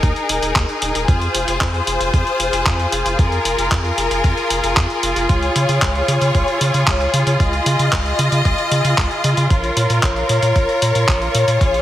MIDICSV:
0, 0, Header, 1, 4, 480
1, 0, Start_track
1, 0, Key_signature, -4, "minor"
1, 0, Tempo, 526316
1, 988, Time_signature, 4, 2, 24, 8
1, 10779, End_track
2, 0, Start_track
2, 0, Title_t, "String section"
2, 0, Program_c, 0, 48
2, 0, Note_on_c, 0, 63, 78
2, 0, Note_on_c, 0, 68, 72
2, 0, Note_on_c, 0, 70, 88
2, 951, Note_off_c, 0, 63, 0
2, 951, Note_off_c, 0, 70, 0
2, 986, Note_on_c, 0, 72, 88
2, 987, Note_on_c, 0, 65, 79
2, 2888, Note_off_c, 0, 72, 0
2, 2907, Note_on_c, 0, 70, 89
2, 4808, Note_off_c, 0, 70, 0
2, 4828, Note_on_c, 0, 73, 85
2, 6729, Note_off_c, 0, 73, 0
2, 6748, Note_on_c, 0, 75, 89
2, 8631, Note_off_c, 0, 68, 0
2, 8649, Note_off_c, 0, 75, 0
2, 8669, Note_on_c, 0, 70, 72
2, 8669, Note_on_c, 0, 73, 83
2, 10569, Note_off_c, 0, 70, 0
2, 10588, Note_on_c, 0, 68, 70
2, 10779, Note_off_c, 0, 65, 0
2, 10779, Note_off_c, 0, 68, 0
2, 10779, Note_off_c, 0, 73, 0
2, 10779, End_track
3, 0, Start_track
3, 0, Title_t, "Analog synth bass"
3, 0, Program_c, 1, 38
3, 28, Note_on_c, 1, 39, 92
3, 119, Note_off_c, 1, 39, 0
3, 270, Note_on_c, 1, 27, 95
3, 360, Note_off_c, 1, 27, 0
3, 388, Note_on_c, 1, 27, 88
3, 479, Note_off_c, 1, 27, 0
3, 508, Note_on_c, 1, 39, 91
3, 599, Note_off_c, 1, 39, 0
3, 750, Note_on_c, 1, 27, 86
3, 840, Note_off_c, 1, 27, 0
3, 870, Note_on_c, 1, 27, 87
3, 960, Note_off_c, 1, 27, 0
3, 988, Note_on_c, 1, 41, 96
3, 1170, Note_off_c, 1, 41, 0
3, 1229, Note_on_c, 1, 29, 84
3, 1320, Note_off_c, 1, 29, 0
3, 1350, Note_on_c, 1, 29, 79
3, 1440, Note_off_c, 1, 29, 0
3, 1468, Note_on_c, 1, 41, 98
3, 1651, Note_off_c, 1, 41, 0
3, 1709, Note_on_c, 1, 29, 101
3, 1800, Note_off_c, 1, 29, 0
3, 1828, Note_on_c, 1, 29, 97
3, 1920, Note_off_c, 1, 29, 0
3, 1948, Note_on_c, 1, 41, 99
3, 2039, Note_off_c, 1, 41, 0
3, 2186, Note_on_c, 1, 29, 81
3, 2278, Note_off_c, 1, 29, 0
3, 2307, Note_on_c, 1, 29, 78
3, 2399, Note_off_c, 1, 29, 0
3, 2428, Note_on_c, 1, 41, 83
3, 2611, Note_off_c, 1, 41, 0
3, 2668, Note_on_c, 1, 29, 88
3, 2759, Note_off_c, 1, 29, 0
3, 2788, Note_on_c, 1, 29, 79
3, 2879, Note_off_c, 1, 29, 0
3, 2908, Note_on_c, 1, 41, 95
3, 3091, Note_off_c, 1, 41, 0
3, 3146, Note_on_c, 1, 29, 79
3, 3238, Note_off_c, 1, 29, 0
3, 3268, Note_on_c, 1, 29, 80
3, 3359, Note_off_c, 1, 29, 0
3, 3388, Note_on_c, 1, 41, 97
3, 3570, Note_off_c, 1, 41, 0
3, 3628, Note_on_c, 1, 29, 96
3, 3719, Note_off_c, 1, 29, 0
3, 3749, Note_on_c, 1, 29, 99
3, 3840, Note_off_c, 1, 29, 0
3, 3868, Note_on_c, 1, 41, 90
3, 3960, Note_off_c, 1, 41, 0
3, 4109, Note_on_c, 1, 29, 95
3, 4200, Note_off_c, 1, 29, 0
3, 4229, Note_on_c, 1, 29, 87
3, 4320, Note_off_c, 1, 29, 0
3, 4349, Note_on_c, 1, 41, 93
3, 4440, Note_off_c, 1, 41, 0
3, 4588, Note_on_c, 1, 29, 75
3, 4679, Note_off_c, 1, 29, 0
3, 4708, Note_on_c, 1, 29, 83
3, 4799, Note_off_c, 1, 29, 0
3, 4828, Note_on_c, 1, 37, 96
3, 5010, Note_off_c, 1, 37, 0
3, 5068, Note_on_c, 1, 49, 83
3, 5159, Note_off_c, 1, 49, 0
3, 5187, Note_on_c, 1, 49, 76
3, 5279, Note_off_c, 1, 49, 0
3, 5308, Note_on_c, 1, 37, 100
3, 5490, Note_off_c, 1, 37, 0
3, 5546, Note_on_c, 1, 49, 96
3, 5638, Note_off_c, 1, 49, 0
3, 5667, Note_on_c, 1, 49, 99
3, 5759, Note_off_c, 1, 49, 0
3, 5789, Note_on_c, 1, 37, 99
3, 5880, Note_off_c, 1, 37, 0
3, 6028, Note_on_c, 1, 49, 84
3, 6119, Note_off_c, 1, 49, 0
3, 6149, Note_on_c, 1, 49, 81
3, 6240, Note_off_c, 1, 49, 0
3, 6268, Note_on_c, 1, 37, 86
3, 6451, Note_off_c, 1, 37, 0
3, 6507, Note_on_c, 1, 49, 91
3, 6599, Note_off_c, 1, 49, 0
3, 6627, Note_on_c, 1, 49, 84
3, 6719, Note_off_c, 1, 49, 0
3, 6748, Note_on_c, 1, 37, 98
3, 6931, Note_off_c, 1, 37, 0
3, 6986, Note_on_c, 1, 49, 82
3, 7078, Note_off_c, 1, 49, 0
3, 7107, Note_on_c, 1, 49, 76
3, 7199, Note_off_c, 1, 49, 0
3, 7228, Note_on_c, 1, 37, 98
3, 7411, Note_off_c, 1, 37, 0
3, 7468, Note_on_c, 1, 49, 98
3, 7559, Note_off_c, 1, 49, 0
3, 7587, Note_on_c, 1, 49, 100
3, 7679, Note_off_c, 1, 49, 0
3, 7708, Note_on_c, 1, 37, 88
3, 7799, Note_off_c, 1, 37, 0
3, 7947, Note_on_c, 1, 49, 92
3, 8039, Note_off_c, 1, 49, 0
3, 8066, Note_on_c, 1, 49, 90
3, 8158, Note_off_c, 1, 49, 0
3, 8188, Note_on_c, 1, 37, 97
3, 8279, Note_off_c, 1, 37, 0
3, 8429, Note_on_c, 1, 49, 90
3, 8520, Note_off_c, 1, 49, 0
3, 8548, Note_on_c, 1, 49, 86
3, 8639, Note_off_c, 1, 49, 0
3, 8668, Note_on_c, 1, 34, 96
3, 8851, Note_off_c, 1, 34, 0
3, 8907, Note_on_c, 1, 46, 79
3, 8999, Note_off_c, 1, 46, 0
3, 9028, Note_on_c, 1, 46, 81
3, 9119, Note_off_c, 1, 46, 0
3, 9148, Note_on_c, 1, 34, 100
3, 9331, Note_off_c, 1, 34, 0
3, 9388, Note_on_c, 1, 46, 98
3, 9479, Note_off_c, 1, 46, 0
3, 9507, Note_on_c, 1, 46, 100
3, 9599, Note_off_c, 1, 46, 0
3, 9628, Note_on_c, 1, 34, 99
3, 9719, Note_off_c, 1, 34, 0
3, 9869, Note_on_c, 1, 46, 85
3, 9960, Note_off_c, 1, 46, 0
3, 9989, Note_on_c, 1, 46, 82
3, 10080, Note_off_c, 1, 46, 0
3, 10108, Note_on_c, 1, 34, 86
3, 10291, Note_off_c, 1, 34, 0
3, 10348, Note_on_c, 1, 46, 90
3, 10439, Note_off_c, 1, 46, 0
3, 10467, Note_on_c, 1, 46, 82
3, 10559, Note_off_c, 1, 46, 0
3, 10588, Note_on_c, 1, 34, 100
3, 10771, Note_off_c, 1, 34, 0
3, 10779, End_track
4, 0, Start_track
4, 0, Title_t, "Drums"
4, 27, Note_on_c, 9, 42, 53
4, 28, Note_on_c, 9, 36, 126
4, 118, Note_off_c, 9, 42, 0
4, 119, Note_off_c, 9, 36, 0
4, 147, Note_on_c, 9, 42, 26
4, 239, Note_off_c, 9, 42, 0
4, 267, Note_on_c, 9, 42, 98
4, 359, Note_off_c, 9, 42, 0
4, 388, Note_on_c, 9, 42, 53
4, 479, Note_off_c, 9, 42, 0
4, 508, Note_on_c, 9, 36, 101
4, 508, Note_on_c, 9, 39, 116
4, 508, Note_on_c, 9, 42, 51
4, 599, Note_off_c, 9, 36, 0
4, 599, Note_off_c, 9, 39, 0
4, 599, Note_off_c, 9, 42, 0
4, 628, Note_on_c, 9, 42, 27
4, 719, Note_off_c, 9, 42, 0
4, 747, Note_on_c, 9, 42, 94
4, 838, Note_off_c, 9, 42, 0
4, 868, Note_on_c, 9, 42, 52
4, 959, Note_off_c, 9, 42, 0
4, 988, Note_on_c, 9, 36, 127
4, 988, Note_on_c, 9, 42, 50
4, 1079, Note_off_c, 9, 36, 0
4, 1079, Note_off_c, 9, 42, 0
4, 1108, Note_on_c, 9, 42, 25
4, 1199, Note_off_c, 9, 42, 0
4, 1227, Note_on_c, 9, 42, 89
4, 1318, Note_off_c, 9, 42, 0
4, 1348, Note_on_c, 9, 42, 53
4, 1439, Note_off_c, 9, 42, 0
4, 1468, Note_on_c, 9, 36, 108
4, 1468, Note_on_c, 9, 39, 119
4, 1468, Note_on_c, 9, 42, 51
4, 1559, Note_off_c, 9, 36, 0
4, 1559, Note_off_c, 9, 39, 0
4, 1559, Note_off_c, 9, 42, 0
4, 1589, Note_on_c, 9, 42, 25
4, 1680, Note_off_c, 9, 42, 0
4, 1708, Note_on_c, 9, 42, 92
4, 1799, Note_off_c, 9, 42, 0
4, 1829, Note_on_c, 9, 42, 51
4, 1920, Note_off_c, 9, 42, 0
4, 1948, Note_on_c, 9, 36, 124
4, 1949, Note_on_c, 9, 42, 52
4, 2039, Note_off_c, 9, 36, 0
4, 2040, Note_off_c, 9, 42, 0
4, 2069, Note_on_c, 9, 42, 25
4, 2160, Note_off_c, 9, 42, 0
4, 2188, Note_on_c, 9, 42, 96
4, 2279, Note_off_c, 9, 42, 0
4, 2308, Note_on_c, 9, 42, 54
4, 2399, Note_off_c, 9, 42, 0
4, 2428, Note_on_c, 9, 36, 105
4, 2429, Note_on_c, 9, 39, 121
4, 2429, Note_on_c, 9, 42, 53
4, 2519, Note_off_c, 9, 36, 0
4, 2520, Note_off_c, 9, 39, 0
4, 2520, Note_off_c, 9, 42, 0
4, 2549, Note_on_c, 9, 42, 28
4, 2640, Note_off_c, 9, 42, 0
4, 2667, Note_on_c, 9, 42, 90
4, 2758, Note_off_c, 9, 42, 0
4, 2788, Note_on_c, 9, 42, 53
4, 2879, Note_off_c, 9, 42, 0
4, 2908, Note_on_c, 9, 36, 124
4, 2908, Note_on_c, 9, 42, 50
4, 3000, Note_off_c, 9, 36, 0
4, 3000, Note_off_c, 9, 42, 0
4, 3029, Note_on_c, 9, 42, 23
4, 3120, Note_off_c, 9, 42, 0
4, 3149, Note_on_c, 9, 42, 87
4, 3240, Note_off_c, 9, 42, 0
4, 3270, Note_on_c, 9, 42, 50
4, 3361, Note_off_c, 9, 42, 0
4, 3388, Note_on_c, 9, 36, 107
4, 3390, Note_on_c, 9, 39, 121
4, 3390, Note_on_c, 9, 42, 50
4, 3479, Note_off_c, 9, 36, 0
4, 3481, Note_off_c, 9, 39, 0
4, 3481, Note_off_c, 9, 42, 0
4, 3508, Note_on_c, 9, 42, 24
4, 3600, Note_off_c, 9, 42, 0
4, 3629, Note_on_c, 9, 42, 88
4, 3720, Note_off_c, 9, 42, 0
4, 3749, Note_on_c, 9, 42, 48
4, 3840, Note_off_c, 9, 42, 0
4, 3868, Note_on_c, 9, 36, 120
4, 3868, Note_on_c, 9, 42, 50
4, 3960, Note_off_c, 9, 36, 0
4, 3960, Note_off_c, 9, 42, 0
4, 3989, Note_on_c, 9, 42, 25
4, 4080, Note_off_c, 9, 42, 0
4, 4108, Note_on_c, 9, 42, 92
4, 4199, Note_off_c, 9, 42, 0
4, 4229, Note_on_c, 9, 42, 51
4, 4320, Note_off_c, 9, 42, 0
4, 4348, Note_on_c, 9, 36, 100
4, 4348, Note_on_c, 9, 39, 119
4, 4348, Note_on_c, 9, 42, 50
4, 4439, Note_off_c, 9, 36, 0
4, 4440, Note_off_c, 9, 39, 0
4, 4440, Note_off_c, 9, 42, 0
4, 4469, Note_on_c, 9, 42, 26
4, 4560, Note_off_c, 9, 42, 0
4, 4588, Note_on_c, 9, 42, 85
4, 4679, Note_off_c, 9, 42, 0
4, 4708, Note_on_c, 9, 42, 49
4, 4799, Note_off_c, 9, 42, 0
4, 4827, Note_on_c, 9, 42, 49
4, 4828, Note_on_c, 9, 36, 118
4, 4919, Note_off_c, 9, 36, 0
4, 4919, Note_off_c, 9, 42, 0
4, 4948, Note_on_c, 9, 42, 23
4, 5039, Note_off_c, 9, 42, 0
4, 5068, Note_on_c, 9, 42, 82
4, 5159, Note_off_c, 9, 42, 0
4, 5188, Note_on_c, 9, 42, 49
4, 5279, Note_off_c, 9, 42, 0
4, 5308, Note_on_c, 9, 36, 106
4, 5309, Note_on_c, 9, 39, 110
4, 5309, Note_on_c, 9, 42, 49
4, 5399, Note_off_c, 9, 36, 0
4, 5400, Note_off_c, 9, 39, 0
4, 5400, Note_off_c, 9, 42, 0
4, 5428, Note_on_c, 9, 42, 23
4, 5520, Note_off_c, 9, 42, 0
4, 5549, Note_on_c, 9, 42, 84
4, 5640, Note_off_c, 9, 42, 0
4, 5668, Note_on_c, 9, 42, 47
4, 5759, Note_off_c, 9, 42, 0
4, 5788, Note_on_c, 9, 36, 119
4, 5788, Note_on_c, 9, 42, 49
4, 5879, Note_off_c, 9, 42, 0
4, 5880, Note_off_c, 9, 36, 0
4, 5909, Note_on_c, 9, 42, 23
4, 6000, Note_off_c, 9, 42, 0
4, 6029, Note_on_c, 9, 42, 88
4, 6120, Note_off_c, 9, 42, 0
4, 6148, Note_on_c, 9, 42, 48
4, 6240, Note_off_c, 9, 42, 0
4, 6268, Note_on_c, 9, 36, 100
4, 6269, Note_on_c, 9, 39, 117
4, 6269, Note_on_c, 9, 42, 49
4, 6360, Note_off_c, 9, 36, 0
4, 6360, Note_off_c, 9, 39, 0
4, 6360, Note_off_c, 9, 42, 0
4, 6388, Note_on_c, 9, 42, 26
4, 6480, Note_off_c, 9, 42, 0
4, 6509, Note_on_c, 9, 42, 85
4, 6600, Note_off_c, 9, 42, 0
4, 6629, Note_on_c, 9, 42, 47
4, 6720, Note_off_c, 9, 42, 0
4, 6748, Note_on_c, 9, 36, 112
4, 6749, Note_on_c, 9, 42, 47
4, 6840, Note_off_c, 9, 36, 0
4, 6840, Note_off_c, 9, 42, 0
4, 6868, Note_on_c, 9, 42, 23
4, 6959, Note_off_c, 9, 42, 0
4, 6988, Note_on_c, 9, 42, 85
4, 7079, Note_off_c, 9, 42, 0
4, 7108, Note_on_c, 9, 42, 47
4, 7199, Note_off_c, 9, 42, 0
4, 7228, Note_on_c, 9, 39, 111
4, 7228, Note_on_c, 9, 42, 47
4, 7229, Note_on_c, 9, 36, 103
4, 7320, Note_off_c, 9, 36, 0
4, 7320, Note_off_c, 9, 39, 0
4, 7320, Note_off_c, 9, 42, 0
4, 7348, Note_on_c, 9, 42, 24
4, 7439, Note_off_c, 9, 42, 0
4, 7468, Note_on_c, 9, 42, 87
4, 7559, Note_off_c, 9, 42, 0
4, 7589, Note_on_c, 9, 42, 49
4, 7680, Note_off_c, 9, 42, 0
4, 7709, Note_on_c, 9, 36, 118
4, 7709, Note_on_c, 9, 42, 48
4, 7800, Note_off_c, 9, 36, 0
4, 7800, Note_off_c, 9, 42, 0
4, 7829, Note_on_c, 9, 42, 23
4, 7920, Note_off_c, 9, 42, 0
4, 7949, Note_on_c, 9, 42, 89
4, 8040, Note_off_c, 9, 42, 0
4, 8068, Note_on_c, 9, 42, 49
4, 8159, Note_off_c, 9, 42, 0
4, 8188, Note_on_c, 9, 36, 98
4, 8189, Note_on_c, 9, 39, 113
4, 8189, Note_on_c, 9, 42, 48
4, 8280, Note_off_c, 9, 36, 0
4, 8281, Note_off_c, 9, 39, 0
4, 8281, Note_off_c, 9, 42, 0
4, 8308, Note_on_c, 9, 42, 25
4, 8399, Note_off_c, 9, 42, 0
4, 8428, Note_on_c, 9, 42, 84
4, 8519, Note_off_c, 9, 42, 0
4, 8548, Note_on_c, 9, 42, 49
4, 8639, Note_off_c, 9, 42, 0
4, 8668, Note_on_c, 9, 42, 50
4, 8669, Note_on_c, 9, 36, 111
4, 8759, Note_off_c, 9, 42, 0
4, 8760, Note_off_c, 9, 36, 0
4, 8788, Note_on_c, 9, 42, 23
4, 8879, Note_off_c, 9, 42, 0
4, 8908, Note_on_c, 9, 42, 85
4, 9000, Note_off_c, 9, 42, 0
4, 9028, Note_on_c, 9, 42, 51
4, 9119, Note_off_c, 9, 42, 0
4, 9148, Note_on_c, 9, 36, 104
4, 9148, Note_on_c, 9, 39, 110
4, 9148, Note_on_c, 9, 42, 49
4, 9239, Note_off_c, 9, 39, 0
4, 9239, Note_off_c, 9, 42, 0
4, 9240, Note_off_c, 9, 36, 0
4, 9268, Note_on_c, 9, 42, 24
4, 9360, Note_off_c, 9, 42, 0
4, 9387, Note_on_c, 9, 42, 88
4, 9479, Note_off_c, 9, 42, 0
4, 9508, Note_on_c, 9, 42, 50
4, 9599, Note_off_c, 9, 42, 0
4, 9628, Note_on_c, 9, 36, 113
4, 9628, Note_on_c, 9, 42, 50
4, 9719, Note_off_c, 9, 36, 0
4, 9719, Note_off_c, 9, 42, 0
4, 9748, Note_on_c, 9, 42, 24
4, 9839, Note_off_c, 9, 42, 0
4, 9868, Note_on_c, 9, 42, 91
4, 9960, Note_off_c, 9, 42, 0
4, 9988, Note_on_c, 9, 42, 50
4, 10079, Note_off_c, 9, 42, 0
4, 10108, Note_on_c, 9, 36, 94
4, 10109, Note_on_c, 9, 39, 110
4, 10109, Note_on_c, 9, 42, 49
4, 10199, Note_off_c, 9, 36, 0
4, 10200, Note_off_c, 9, 39, 0
4, 10200, Note_off_c, 9, 42, 0
4, 10229, Note_on_c, 9, 42, 26
4, 10320, Note_off_c, 9, 42, 0
4, 10348, Note_on_c, 9, 42, 86
4, 10439, Note_off_c, 9, 42, 0
4, 10468, Note_on_c, 9, 42, 49
4, 10560, Note_off_c, 9, 42, 0
4, 10588, Note_on_c, 9, 36, 114
4, 10589, Note_on_c, 9, 42, 53
4, 10679, Note_off_c, 9, 36, 0
4, 10680, Note_off_c, 9, 42, 0
4, 10709, Note_on_c, 9, 42, 24
4, 10779, Note_off_c, 9, 42, 0
4, 10779, End_track
0, 0, End_of_file